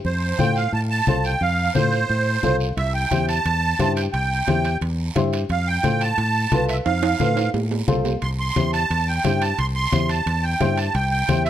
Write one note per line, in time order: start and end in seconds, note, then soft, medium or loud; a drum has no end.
0.05 0.32 F2 medium
0.05 0.40 C5 medium
0.05 high conga soft
0.05 long guiro medium
0.39 0.66 A2 medium
0.39 0.63 F4 medium
0.39 0.63 A4 medium
0.39 0.63 C5 medium
0.39 0.57 G5 loud
0.39 high conga medium
0.39 short guiro medium
0.56 0.72 F5 medium
0.56 short guiro medium
0.73 1.00 A2 medium
0.73 0.81 A5 medium
0.73 high conga soft
0.73 long guiro medium
0.90 1.25 A5 loud
1.07 1.34 C2 medium
1.07 1.31 F4 medium
1.07 1.31 A4 medium
1.07 1.31 C5 medium
1.07 high conga medium
1.07 short guiro medium
1.24 1.42 G5 loud
1.24 short guiro medium
1.41 1.68 F2 medium
1.41 1.73 F5 loud
1.41 high conga soft
1.41 long guiro medium
1.75 2.03 A2 medium
1.75 1.99 F4 medium
1.75 1.99 A4 medium
1.75 2.56 C5 medium
1.75 1.99 C5 medium
1.75 high conga medium
1.75 short guiro medium
1.92 short guiro medium
2.09 2.37 A2 loud
2.09 high conga soft
2.09 long guiro medium
2.43 2.70 C2 medium
2.43 2.67 F4 medium
2.43 2.67 A4 medium
2.43 2.68 C5 medium
2.43 high conga medium
2.43 short guiro medium
2.60 short guiro medium
2.77 3.04 C2 medium
2.77 2.93 E5 medium
2.77 high conga soft
2.77 high timbale medium
2.77 long guiro medium
2.94 3.26 G5 medium
3.11 3.38 E2 medium
3.11 3.35 E4 medium
3.11 3.35 G4 medium
3.11 3.35 C5 medium
3.11 high conga medium
3.11 high timbale medium
3.11 short guiro medium
3.28 3.93 A5 loud
3.28 high timbale medium
3.28 short guiro medium
3.45 3.73 E2 loud
3.45 high conga soft
3.45 high timbale medium
3.45 long guiro medium
3.79 4.07 G2 loud
3.79 4.03 E4 medium
3.79 4.03 G4 medium
3.79 4.03 C5 medium
3.79 high conga medium
3.79 high timbale medium
3.79 short guiro medium
3.96 4.04 G5 medium
3.96 high timbale medium
3.96 short guiro medium
4.13 4.41 C2 medium
4.13 4.77 G5 medium
4.13 high conga soft
4.13 high timbale medium
4.13 long guiro medium
4.47 4.75 E2 medium
4.47 4.71 E4 medium
4.47 4.71 G4 medium
4.47 4.72 C5 medium
4.47 high conga medium
4.47 high timbale medium
4.47 short guiro medium
4.65 high timbale medium
4.65 short guiro medium
4.81 5.09 E2 medium
4.81 high conga soft
4.81 high timbale medium
4.81 long guiro medium
5.15 5.43 G2 medium
5.15 5.39 E4 medium
5.15 5.40 G4 medium
5.15 5.40 C5 medium
5.15 high conga medium
5.15 high timbale medium
5.15 short guiro medium
5.33 high timbale medium
5.33 short guiro medium
5.49 5.77 F2 loud
5.49 5.68 F5 medium
5.49 high conga soft
5.49 high timbale medium
5.49 long guiro medium
5.68 6.02 G5 loud
5.83 6.11 A2 medium
5.83 6.07 F4 medium
5.83 6.08 A4 medium
5.83 6.08 C5 medium
5.83 high conga medium
5.83 high timbale medium
5.83 short guiro medium
6.01 6.65 A5 loud
6.01 high timbale medium
6.01 short guiro medium
6.18 6.45 A2 loud
6.18 high conga soft
6.18 high timbale medium
6.18 long guiro medium
6.51 6.79 C2 medium
6.51 6.76 F4 medium
6.51 6.76 A4 medium
6.51 6.76 B4 medium
6.51 high conga medium
6.51 high timbale medium
6.51 short guiro medium
6.69 6.77 E5 medium
6.69 high timbale medium
6.69 short guiro medium
6.85 7.13 F2 medium
6.85 7.50 F5 medium
6.85 high conga soft
6.85 high timbale medium
6.85 long guiro medium
7.03 high timbale loud
7.20 7.47 A2 medium
7.20 7.44 F4 medium
7.20 7.44 A4 medium
7.20 7.44 B4 medium
7.20 high conga medium
7.20 high timbale medium
7.20 short guiro medium
7.37 high timbale medium
7.37 short guiro medium
7.54 7.81 A2 loud
7.54 high conga soft
7.54 low timbale medium
7.54 long guiro medium
7.71 low timbale medium
7.88 8.15 C2 medium
7.88 8.12 F4 medium
7.88 8.12 A4 medium
7.88 8.12 C5 medium
7.88 high conga medium
7.88 low timbale medium
7.88 short guiro medium
8.05 low timbale loud
8.05 short guiro medium
8.22 8.49 C2 medium
8.22 8.30 C6 loud
8.22 high conga soft
8.22 high timbale medium
8.22 long guiro medium
8.39 8.71 C6 loud
8.56 8.83 E2 medium
8.56 8.80 E4 medium
8.56 8.80 G4 medium
8.56 8.80 C5 medium
8.56 high conga medium
8.56 high timbale medium
8.56 short guiro medium
8.73 9.08 A5 loud
8.73 high timbale medium
8.73 short guiro medium
8.90 9.18 E2 medium
8.90 high conga soft
8.90 high timbale medium
8.90 long guiro medium
9.08 9.43 G5 medium
9.24 9.52 G2 medium
9.24 9.48 E4 medium
9.24 9.48 G4 medium
9.24 9.48 C5 medium
9.24 high conga medium
9.24 high timbale medium
9.24 low timbale medium
9.24 short guiro medium
9.42 9.59 A5 medium
9.42 high timbale medium
9.42 short guiro medium
9.58 9.86 C2 medium
9.58 9.66 C6 loud
9.58 high conga soft
9.58 high timbale medium
9.58 long guiro medium
9.76 10.11 C6 loud
9.92 10.20 E2 medium
9.92 10.16 E4 medium
9.92 10.16 G4 medium
9.92 10.17 C5 medium
9.92 high conga medium
9.92 high timbale medium
9.92 short guiro medium
10.09 10.45 A5 medium
10.09 high timbale medium
10.09 short guiro medium
10.26 10.54 E2 loud
10.26 high conga soft
10.26 high timbale medium
10.26 long guiro medium
10.43 10.79 G5 loud
10.60 10.88 G2 medium
10.60 10.84 E4 medium
10.60 10.84 G4 medium
10.60 10.85 C5 medium
10.60 high conga medium
10.60 high timbale medium
10.60 low timbale medium
10.60 short guiro medium
10.77 10.95 A5 medium
10.77 high timbale medium
10.77 short guiro medium
10.94 11.22 C2 medium
10.94 11.09 G5 loud
10.94 high conga soft
10.94 high timbale medium
10.94 long guiro medium
11.11 11.43 G5 loud
11.28 11.50 E2 medium
11.28 11.50 E4 medium
11.28 11.50 G4 medium
11.28 11.50 C5 medium
11.28 high conga medium
11.28 high timbale medium
11.28 short guiro medium
11.45 11.50 E5 medium
11.45 high timbale medium
11.45 short guiro medium